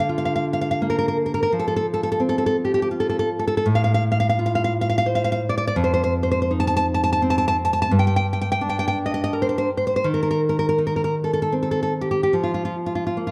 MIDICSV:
0, 0, Header, 1, 2, 480
1, 0, Start_track
1, 0, Tempo, 705053
1, 1029, Time_signature, 3, 2, 24, 8
1, 1986, Tempo, 750939
1, 2466, Tempo, 692042
1, 3906, Tempo, 718563
1, 7266, Tempo, 760456
1, 7746, Tempo, 813008
1, 8796, End_track
2, 0, Start_track
2, 0, Title_t, "Nylon-string guitar"
2, 0, Program_c, 0, 24
2, 0, Note_on_c, 0, 50, 55
2, 63, Note_on_c, 0, 65, 48
2, 122, Note_on_c, 0, 77, 69
2, 164, Note_off_c, 0, 77, 0
2, 173, Note_on_c, 0, 77, 66
2, 234, Note_off_c, 0, 77, 0
2, 242, Note_on_c, 0, 77, 72
2, 304, Note_off_c, 0, 77, 0
2, 363, Note_on_c, 0, 77, 65
2, 410, Note_off_c, 0, 77, 0
2, 418, Note_on_c, 0, 77, 76
2, 475, Note_off_c, 0, 77, 0
2, 483, Note_on_c, 0, 77, 77
2, 545, Note_off_c, 0, 77, 0
2, 556, Note_on_c, 0, 58, 46
2, 611, Note_on_c, 0, 70, 64
2, 663, Note_off_c, 0, 70, 0
2, 671, Note_on_c, 0, 70, 66
2, 728, Note_off_c, 0, 70, 0
2, 736, Note_on_c, 0, 70, 69
2, 788, Note_off_c, 0, 65, 0
2, 793, Note_off_c, 0, 70, 0
2, 857, Note_on_c, 0, 70, 59
2, 905, Note_off_c, 0, 70, 0
2, 913, Note_on_c, 0, 70, 68
2, 963, Note_off_c, 0, 70, 0
2, 972, Note_on_c, 0, 70, 74
2, 995, Note_off_c, 0, 50, 0
2, 1030, Note_off_c, 0, 70, 0
2, 1033, Note_off_c, 0, 58, 0
2, 1038, Note_on_c, 0, 53, 57
2, 1086, Note_on_c, 0, 69, 67
2, 1133, Note_off_c, 0, 69, 0
2, 1141, Note_on_c, 0, 69, 68
2, 1193, Note_off_c, 0, 69, 0
2, 1201, Note_on_c, 0, 69, 74
2, 1263, Note_off_c, 0, 69, 0
2, 1319, Note_on_c, 0, 69, 64
2, 1376, Note_off_c, 0, 69, 0
2, 1384, Note_on_c, 0, 69, 67
2, 1433, Note_off_c, 0, 69, 0
2, 1442, Note_on_c, 0, 69, 72
2, 1497, Note_on_c, 0, 60, 50
2, 1502, Note_off_c, 0, 69, 0
2, 1559, Note_on_c, 0, 69, 68
2, 1613, Note_off_c, 0, 69, 0
2, 1621, Note_on_c, 0, 69, 70
2, 1669, Note_off_c, 0, 69, 0
2, 1677, Note_on_c, 0, 69, 73
2, 1740, Note_off_c, 0, 69, 0
2, 1802, Note_on_c, 0, 67, 58
2, 1858, Note_off_c, 0, 67, 0
2, 1866, Note_on_c, 0, 67, 66
2, 1913, Note_off_c, 0, 67, 0
2, 1922, Note_on_c, 0, 67, 75
2, 1979, Note_off_c, 0, 67, 0
2, 1981, Note_on_c, 0, 65, 52
2, 2039, Note_on_c, 0, 69, 66
2, 2092, Note_off_c, 0, 69, 0
2, 2100, Note_on_c, 0, 69, 72
2, 2154, Note_off_c, 0, 69, 0
2, 2162, Note_on_c, 0, 69, 73
2, 2223, Note_off_c, 0, 60, 0
2, 2224, Note_off_c, 0, 69, 0
2, 2291, Note_on_c, 0, 69, 66
2, 2335, Note_off_c, 0, 69, 0
2, 2343, Note_on_c, 0, 69, 74
2, 2397, Note_off_c, 0, 69, 0
2, 2405, Note_on_c, 0, 69, 78
2, 2446, Note_off_c, 0, 53, 0
2, 2459, Note_on_c, 0, 45, 68
2, 2464, Note_off_c, 0, 65, 0
2, 2465, Note_off_c, 0, 69, 0
2, 2524, Note_on_c, 0, 77, 76
2, 2577, Note_off_c, 0, 77, 0
2, 2585, Note_on_c, 0, 77, 76
2, 2649, Note_off_c, 0, 77, 0
2, 2657, Note_on_c, 0, 77, 85
2, 2716, Note_off_c, 0, 77, 0
2, 2777, Note_on_c, 0, 77, 72
2, 2826, Note_off_c, 0, 77, 0
2, 2834, Note_on_c, 0, 77, 81
2, 2892, Note_off_c, 0, 77, 0
2, 2900, Note_on_c, 0, 77, 83
2, 2958, Note_off_c, 0, 77, 0
2, 2966, Note_on_c, 0, 65, 53
2, 3014, Note_on_c, 0, 77, 74
2, 3070, Note_off_c, 0, 77, 0
2, 3079, Note_on_c, 0, 77, 77
2, 3134, Note_off_c, 0, 77, 0
2, 3142, Note_on_c, 0, 77, 81
2, 3198, Note_off_c, 0, 77, 0
2, 3260, Note_on_c, 0, 77, 79
2, 3309, Note_off_c, 0, 77, 0
2, 3317, Note_on_c, 0, 77, 84
2, 3367, Note_off_c, 0, 77, 0
2, 3375, Note_on_c, 0, 77, 93
2, 3432, Note_off_c, 0, 77, 0
2, 3432, Note_on_c, 0, 72, 61
2, 3495, Note_on_c, 0, 77, 80
2, 3551, Note_off_c, 0, 77, 0
2, 3559, Note_on_c, 0, 77, 86
2, 3603, Note_off_c, 0, 77, 0
2, 3611, Note_on_c, 0, 77, 85
2, 3668, Note_off_c, 0, 77, 0
2, 3672, Note_off_c, 0, 65, 0
2, 3732, Note_on_c, 0, 74, 77
2, 3780, Note_off_c, 0, 74, 0
2, 3789, Note_on_c, 0, 74, 85
2, 3848, Note_off_c, 0, 74, 0
2, 3858, Note_on_c, 0, 74, 92
2, 3875, Note_off_c, 0, 45, 0
2, 3907, Note_off_c, 0, 72, 0
2, 3912, Note_off_c, 0, 74, 0
2, 3917, Note_on_c, 0, 41, 72
2, 3969, Note_on_c, 0, 72, 66
2, 4026, Note_off_c, 0, 72, 0
2, 4034, Note_on_c, 0, 72, 76
2, 4092, Note_off_c, 0, 72, 0
2, 4101, Note_on_c, 0, 72, 78
2, 4157, Note_off_c, 0, 72, 0
2, 4231, Note_on_c, 0, 72, 67
2, 4279, Note_off_c, 0, 72, 0
2, 4287, Note_on_c, 0, 72, 74
2, 4345, Note_off_c, 0, 72, 0
2, 4356, Note_on_c, 0, 72, 74
2, 4410, Note_off_c, 0, 72, 0
2, 4415, Note_on_c, 0, 63, 57
2, 4476, Note_on_c, 0, 81, 90
2, 4519, Note_off_c, 0, 81, 0
2, 4527, Note_on_c, 0, 81, 91
2, 4580, Note_off_c, 0, 81, 0
2, 4588, Note_on_c, 0, 81, 95
2, 4645, Note_off_c, 0, 81, 0
2, 4707, Note_on_c, 0, 81, 85
2, 4761, Note_off_c, 0, 81, 0
2, 4769, Note_on_c, 0, 81, 91
2, 4821, Note_off_c, 0, 81, 0
2, 4829, Note_on_c, 0, 81, 92
2, 4882, Note_off_c, 0, 81, 0
2, 4893, Note_on_c, 0, 60, 58
2, 4947, Note_on_c, 0, 81, 86
2, 4990, Note_off_c, 0, 81, 0
2, 4998, Note_on_c, 0, 81, 91
2, 5055, Note_off_c, 0, 81, 0
2, 5064, Note_on_c, 0, 81, 100
2, 5117, Note_off_c, 0, 81, 0
2, 5118, Note_off_c, 0, 63, 0
2, 5178, Note_on_c, 0, 81, 85
2, 5225, Note_off_c, 0, 81, 0
2, 5233, Note_on_c, 0, 81, 95
2, 5284, Note_off_c, 0, 81, 0
2, 5292, Note_on_c, 0, 81, 96
2, 5325, Note_off_c, 0, 41, 0
2, 5349, Note_off_c, 0, 81, 0
2, 5354, Note_off_c, 0, 60, 0
2, 5355, Note_on_c, 0, 43, 72
2, 5407, Note_on_c, 0, 79, 91
2, 5452, Note_off_c, 0, 79, 0
2, 5460, Note_on_c, 0, 79, 88
2, 5514, Note_off_c, 0, 79, 0
2, 5522, Note_on_c, 0, 79, 94
2, 5583, Note_off_c, 0, 79, 0
2, 5633, Note_on_c, 0, 79, 82
2, 5682, Note_off_c, 0, 79, 0
2, 5690, Note_on_c, 0, 79, 89
2, 5750, Note_off_c, 0, 79, 0
2, 5758, Note_on_c, 0, 79, 97
2, 5822, Note_off_c, 0, 79, 0
2, 5822, Note_on_c, 0, 62, 60
2, 5877, Note_on_c, 0, 79, 80
2, 5933, Note_off_c, 0, 79, 0
2, 5941, Note_on_c, 0, 79, 83
2, 5991, Note_off_c, 0, 79, 0
2, 5999, Note_on_c, 0, 79, 84
2, 6062, Note_off_c, 0, 79, 0
2, 6119, Note_on_c, 0, 75, 71
2, 6166, Note_off_c, 0, 75, 0
2, 6174, Note_on_c, 0, 75, 80
2, 6232, Note_off_c, 0, 75, 0
2, 6240, Note_on_c, 0, 75, 87
2, 6301, Note_off_c, 0, 75, 0
2, 6302, Note_on_c, 0, 70, 57
2, 6361, Note_on_c, 0, 72, 69
2, 6400, Note_off_c, 0, 72, 0
2, 6408, Note_on_c, 0, 72, 70
2, 6460, Note_off_c, 0, 72, 0
2, 6468, Note_on_c, 0, 72, 77
2, 6535, Note_off_c, 0, 72, 0
2, 6540, Note_off_c, 0, 62, 0
2, 6598, Note_on_c, 0, 72, 69
2, 6653, Note_off_c, 0, 72, 0
2, 6661, Note_on_c, 0, 72, 74
2, 6715, Note_off_c, 0, 72, 0
2, 6723, Note_on_c, 0, 72, 77
2, 6759, Note_off_c, 0, 43, 0
2, 6777, Note_on_c, 0, 51, 72
2, 6780, Note_off_c, 0, 70, 0
2, 6782, Note_off_c, 0, 72, 0
2, 6842, Note_on_c, 0, 70, 65
2, 6892, Note_off_c, 0, 70, 0
2, 6900, Note_on_c, 0, 70, 67
2, 6946, Note_off_c, 0, 70, 0
2, 6954, Note_on_c, 0, 70, 69
2, 7018, Note_off_c, 0, 70, 0
2, 7077, Note_on_c, 0, 70, 64
2, 7134, Note_off_c, 0, 70, 0
2, 7143, Note_on_c, 0, 70, 64
2, 7200, Note_off_c, 0, 70, 0
2, 7208, Note_on_c, 0, 70, 68
2, 7268, Note_off_c, 0, 70, 0
2, 7272, Note_on_c, 0, 63, 51
2, 7324, Note_on_c, 0, 70, 57
2, 7377, Note_off_c, 0, 70, 0
2, 7384, Note_on_c, 0, 70, 60
2, 7427, Note_off_c, 0, 70, 0
2, 7434, Note_on_c, 0, 70, 62
2, 7499, Note_off_c, 0, 70, 0
2, 7560, Note_on_c, 0, 69, 61
2, 7612, Note_off_c, 0, 69, 0
2, 7619, Note_on_c, 0, 69, 64
2, 7666, Note_off_c, 0, 69, 0
2, 7674, Note_on_c, 0, 69, 71
2, 7739, Note_on_c, 0, 60, 48
2, 7741, Note_off_c, 0, 69, 0
2, 7800, Note_on_c, 0, 69, 59
2, 7844, Note_off_c, 0, 69, 0
2, 7851, Note_on_c, 0, 69, 61
2, 7911, Note_off_c, 0, 69, 0
2, 7918, Note_on_c, 0, 69, 63
2, 7978, Note_off_c, 0, 69, 0
2, 7982, Note_off_c, 0, 63, 0
2, 8029, Note_on_c, 0, 67, 59
2, 8078, Note_off_c, 0, 67, 0
2, 8085, Note_on_c, 0, 67, 62
2, 8151, Note_off_c, 0, 67, 0
2, 8158, Note_on_c, 0, 67, 64
2, 8195, Note_off_c, 0, 51, 0
2, 8216, Note_on_c, 0, 53, 55
2, 8217, Note_off_c, 0, 60, 0
2, 8219, Note_off_c, 0, 67, 0
2, 8277, Note_on_c, 0, 65, 56
2, 8334, Note_off_c, 0, 65, 0
2, 8341, Note_on_c, 0, 65, 57
2, 8397, Note_off_c, 0, 65, 0
2, 8404, Note_on_c, 0, 65, 60
2, 8464, Note_off_c, 0, 65, 0
2, 8531, Note_on_c, 0, 65, 53
2, 8576, Note_off_c, 0, 65, 0
2, 8583, Note_on_c, 0, 65, 57
2, 8643, Note_off_c, 0, 65, 0
2, 8650, Note_on_c, 0, 65, 61
2, 8708, Note_off_c, 0, 65, 0
2, 8711, Note_on_c, 0, 58, 44
2, 8771, Note_on_c, 0, 65, 56
2, 8796, Note_off_c, 0, 53, 0
2, 8796, Note_off_c, 0, 58, 0
2, 8796, Note_off_c, 0, 65, 0
2, 8796, End_track
0, 0, End_of_file